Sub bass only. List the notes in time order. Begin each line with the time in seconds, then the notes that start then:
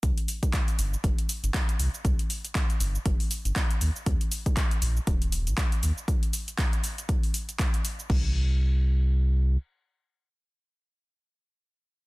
0.03 C2
0.79 G1
1.04 G1
1.44 G1
1.79 C2
2.05 C2
2.80 G1
3.06 G1
3.45 G1
3.81 D#2
4.06 D#2
4.82 A#1
5.07 D#1
5.47 A#1
5.83 D#2
8.10 C2